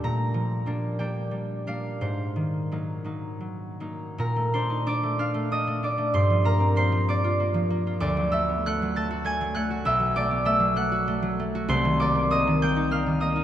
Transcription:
X:1
M:6/8
L:1/16
Q:3/8=64
K:Bb
V:1 name="Harp"
[gb]6 g4 f2 | c12 | [Bb]2 [cc']2 [dd']2 [ff']2 [ee']2 [dd']2 | [cc']2 [Bb]2 [cc']2 [dd']6 |
[dd']2 [=e=e']2 [^f^f']2 [aa']2 [_a_a']2 [ff']2 | [=e=e']2 [dd']2 [ee']2 [^f^f']6 | [cc']2 [dd']2 [ee']2 [gg']2 [ff']2 [ee']2 |]
V:2 name="Harp"
[B,,G,B,D]2 F,2 [G,B,D]2 [G,B,D]2 G,2 [G,B,D]2 | _A,,2 E,2 [_G,B,E]2 [G,B,E]2 G,2 [G,B,E]2 | B,, A, D E D A, D A, D A, D A, | G,, F, B, C B, F, B, F B, F, B, F |
D,, ^F, A, _C A, F, A, ^F A, F, A, F | =B,,, ^F, A, =B, A, F, A, ^F A, F, A, F | C,, E, B, C B, E, B, E B, E, B, E |]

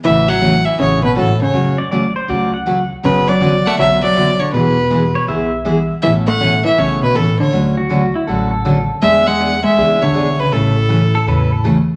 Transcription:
X:1
M:4/4
L:1/16
Q:"Swing" 1/4=160
K:A
V:1 name="Fiddle"
e2 f4 e2 c2 B2 A2 c2- | c2 z12 z2 | B2 d4 f2 e2 d4 c2 | B8 z8 |
e2 f4 e2 c2 B2 A2 c2- | c2 z12 z2 | e2 f4 e4 c4 B2 | A12 z4 |]
V:2 name="Pedal steel guitar"
z16 | z2 d2 d2 =c2 d2 f4- f z | z16 | z6 c2 e6- e z |
z16 | z2 F4 E2 A2 A4- A z | z16 | z6 A2 B2 A2 z4 |]
V:3 name="Steel-string acoustic guitar"
[C,E,A,CF]2 z2 [C,E,A,CF] z3 [C,E,A,CF]2 z2 [C,E,A,CF] z3 | [C,F,A,CF]2 z2 [C,F,A,CF] z3 [C,F,A,CF]2 z2 [C,F,A,CF] z3 | [D,F,B,CF]2 z2 [D,F,B,CF] z3 [D,F,B,CF]2 z2 [D,F,B,CF] z3 | [E,G,B,EG]2 z2 [E,G,B,EG] z3 [E,G,B,EG]2 z2 [E,G,B,EG] z3 |
[B,,E,A,CA]2 z2 [B,,E,A,CA] z3 [B,,E,A,CA]2 z2 [B,,E,A,CA] z3 | [D,F,A,CF]2 z2 [D,F,A,CF] z3 [D,F,A,CF]2 z2 [D,F,A,CF] z3 | [E,B,DG]2 z2 [E,B,DG] z3 [E,B,DG]2 z2 [E,B,DG] z3 | [C,E,A,CA]2 z2 [C,E,A,CA] z3 [C,E,A,CA]2 z2 [C,E,A,CA] z3 |]
V:4 name="Hollow-body jazz guitar" clef=bass
E,2 F,4 E,2 C,2 B,,2 A,,2 C,2- | C,2 z12 z2 | C,2 F,4 A,2 F,2 F,4 D,2 | B,,8 z8 |
E,2 A,4 E,2 C,2 B,,2 A,,2 D,2- | D,2 z12 z2 | G,2 G,4 G,4 D,4 C,2 | A,,12 z4 |]
V:5 name="Upright bass" clef=bass
A,,,8 A,,,4 G,,,4 | F,,,8 C,,8 | F,,,8 B,,,8 | E,,,8 B,,,8 |
A,,,8 B,,,4 C,,4 | D,,8 A,,,8 | E,,8 C,,4 B,,,4 | A,,,8 E,,8 |]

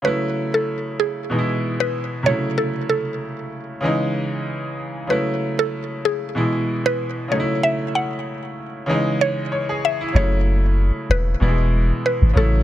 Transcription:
X:1
M:4/4
L:1/16
Q:"Swing 16ths" 1/4=95
K:F#dor
V:1 name="Synth pluck"
B3 A3 G4- G B3 c2 | A2 A6 z8 | B3 A3 G4- G B3 c2 | e2 f8 c4 e2 |
c6 B6 B2 A2 |]
V:2 name="Grand piano"
z16 | z16 | z16 | z12 c G2 E- |
E z12 z3 |]
V:3 name="Grand piano" clef=bass
[C,F,A,E]8 [B,,E,G,DE]6 [^B,,C,F,A,E]2- | [^B,,C,F,A,E]8 [C,E,G,D]8 | [C,F,A,E]8 [B,,E,G,E]6 [C,F,A,DE]2- | [C,F,A,DE]8 [C,E,G,D]8 |
[C,F,A,E]8 [B,,E,=G,^G,E]6 [C,F,A,E]2 |]
V:4 name="Sub bass" clef=bass
z16 | z16 | z16 | z16 |
F,,,4- F,,, z E,,,2 E,,,4 z G,,, A,,,2 |]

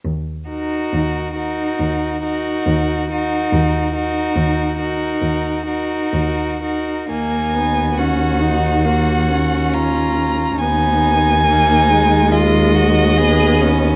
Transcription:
X:1
M:4/4
L:1/8
Q:1/4=69
K:Ebm
V:1 name="Violin"
z B2 B2 B2 B- | B B2 B2 B2 B | a2 g2 g2 b2 | a4 e4 |]
V:2 name="Violin"
z G2 G2 G2 G- | G G2 G2 G2 G | E2 G4 F2 | E2 E2 F G A D |]
V:3 name="Viola"
z E2 E2 E2 E- | E E2 E2 E2 E | B, C D E B, D3 | C2 B, A,3 C2 |]
V:4 name="Cello" clef=bass
E,,2 E,,2 E,,2 E,,2 | E,,2 E,,2 E,,2 E,,2 | E,,8 | E,,8 |]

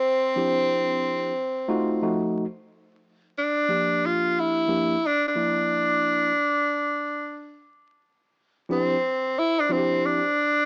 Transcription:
X:1
M:4/4
L:1/16
Q:"Swing 16ths" 1/4=90
K:Dm
V:1 name="Tenor saxophone"
C12- C2 z2 | z4 D4 F2 E4 D D- | D12- D2 z2 | z4 C4 E D C2 D4 |]
V:2 name="Tine electric piano"
z2 [F,CDEG]6 z2 [A,_EF^F]2 [=F,A,E_G]2 z2 | z6 [F,B,DG]6 [F,B,DG]2 z2 | [F,B,DE]6 z8 z2 | z4 [F,CDEG]2 z4 [F,CDE^FG]2 z4 |]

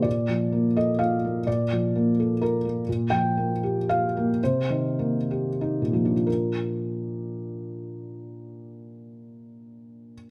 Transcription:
X:1
M:3/4
L:1/8
Q:1/4=110
K:Bb
V:1 name="Felt piano"
d3 e f2 | d4 B z | z g3 f2 | c6 |
[B,,F,DFB]6- | [B,,F,DFB]6 |]
V:2 name="Felt piano"
B,, F, B, A F B, | B,, F, B, A F B, | B,, F, B, G F B, | C, E, B, G E B, |
z6 | z6 |]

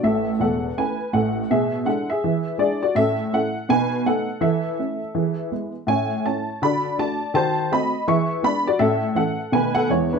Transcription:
X:1
M:4/4
L:1/8
Q:"Swing" 1/4=164
K:A
V:1 name="Honky-tonk piano"
[Ae]2 [Af]2 [Bg]2 [Af]2 | [Ge]2 [Af] [Ge]3 [Gd] [Fd] | [Ae]2 [Af]2 [Bg]2 [Af]2 | [Ae]6 z2 |
[cg]2 [ca]2 [db]2 [da]2 | [^Ba]2 [^d=b]2 [ec']2 [=db] [Fd] | [Ae]2 [Af]2 [Bg] [Af] [Ec] [DB] |]
V:2 name="Honky-tonk piano"
[A,,,A,,]2 [E,,,E,,]2 [A,CE]2 [A,,,A,,]2 | B,,2 [G,DE]2 [E,G]2 [G,DE]2 | [A,,C]2 [A,CE]2 [B,,^D]2 [A,B,D]2 | E,2 [A,CE]2 [E,G]2 [G,B,E]2 |
[A,,C]2 [A,CE]2 [D,F]2 [A,DF]2 | [^D,F]2 [A,^B,F]2 [E,G]2 [G,=B,=D]2 | [A,,C]2 [E,A,C]2 [B,,^D,A,B,^D]2 [E,,E,G,B,]2 |]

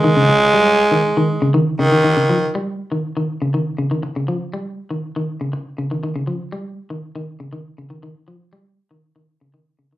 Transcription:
X:1
M:4/4
L:1/16
Q:1/4=120
K:Dblyd
V:1 name="Tenor saxophone" clef=bass
A,12 z2 E,2- | E,4 z12 | z16 | z16 |
z16 |]
V:2 name="Clean electric guitar" clef=bass
E, D, z2 G,2 z E,2 E,2 D, E,2 D, E, | E, D, F,2 G,2 z E,2 E,2 D, E,2 D, E, | z D, F,2 G,2 z E,2 E,2 D, z2 D, E, | E, D, F,2 G,2 z E,2 E,2 D, E,2 D, E, |
E, z F,2 G,2 z E,2 E,2 D, E,2 D, E, |]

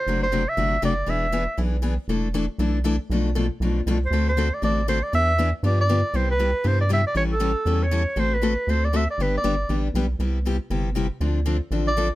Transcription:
X:1
M:4/4
L:1/8
Q:"Swing" 1/4=237
K:Ephr
V:1 name="Clarinet"
c c2 e3 d2 | e4 z4 | z8 | z6 z c- |
c c2 d d2 c d | e3 z d d3 | [K:C] c B3 c d e d | ^c A4 c3 |
c B3 c d e d | B d4 z3 | z8 | z4 z d2 z |]
V:2 name="Steel-string acoustic guitar"
[C,^F,A,D^F] z [C,F,A,DF] z [C,F,A,DF] z [C,F,A,DF] z | [E,B,D^G] z [E,B,DG] z [E,B,DG] z [E,B,DG] z | [E,A,DEA] z [E,A,DEA] z [E,A,DEA] z [E,A,DEA] z | [B,,F,A,DA] z [B,,F,A,DA] z [B,,F,A,DA] z [B,,F,A,DA] z |
[D,A,C^FA] z [D,A,CFA] z [D,A,CFA] z [D,A,CFA] z | [E,B,D^G] z [E,B,DG] z [D,F,B,D=G] z [D,F,B,DG] z | [K:C] [C,G,B,EG] z [C,G,B,EG] z [C,G,B,EG] z [C,G,B,EG] z | [E,G,^CEA] z [E,G,CEA] z [E,G,CEA] z [E,G,CEA] z |
[D,A,C^FA] z [D,A,CFA] z [D,A,CFA] z [D,A,CFA] z | [D,G,B,DG] z [D,G,B,DG] z [D,G,B,DG] z [D,G,B,DG] z | [C,G,B,EG] z [C,G,B,EG] z [C,G,B,EG] z [C,G,B,EG] z | [D,F,CDA] z [D,F,CDA] z [D,F,CDA] z [D,F,CDA] z |]
V:3 name="Analog synth bass" clef=bass
^F,,,4 G,,,2 F,,,2 | E,,,4 B,,,4 | E,,,4 B,,,4 | B,,,4 B,,,2 C,,2 |
D,,4 A,,,4 | E,,4 G,,4 | [K:C] C,,4 G,,4 | A,,,4 E,,4 |
A,,,4 D,,4 | G,,,2 G,,,2 A,,,2 B,,,2 | C,,4 G,,,4 | D,,4 A,,,4 |]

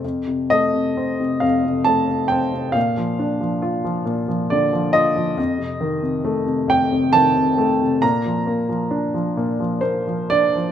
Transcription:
X:1
M:3/4
L:1/16
Q:1/4=68
K:Bb
V:1 name="Grand piano"
z2 e4 f2 a2 g2 | f6 z2 d2 e2- | e6 g2 a4 | b8 c2 d2 |]
V:2 name="Grand piano" clef=bass
F,, C, A, C, C C, F,, C, A, C, C C, | B,, F, D F, F F, B,, F, D, F, F F, | F,, C, E, C, A, C, F,, C, E, C, A, C, | B,, F, B, F, D F, B,, F, B, F, D F, |]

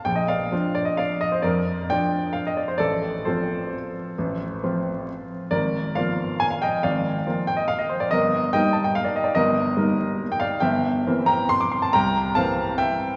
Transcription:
X:1
M:3/4
L:1/16
Q:1/4=137
K:Bb
V:1 name="Grand piano"
g e [df]4 d e [df]2 e c | [Bd]4 [dg]4 f e d c | [Ad]4 [Ac]8- | [Ac]8 z4 |
[Bd]4 [df]4 _a f [eg]2 | [df]6 g e f e c d | [Be]4 [eg]2 a g f d e d | [Be]8- [Be] g [df]2 |
[=eg]6 [gb]2 c' d' c' a | [gb]4 [fa]4 [=eg]4 |]
V:2 name="Grand piano" clef=bass
B,,,4 [F,DF]8 | F,,4 [F,DF]8 | A,,,4 [F,CF]8 | A,,,4 [F,CF]8 |
_A,,,4 [F,B,F]8 | _A,,,4 [F,B,F]8 | G,,,4 [G,B,E]8 | G,,,4 [G,B,E]8 |
G,,,4 [=E,B,C]8 | C,,4 [=E,B,C]8 |]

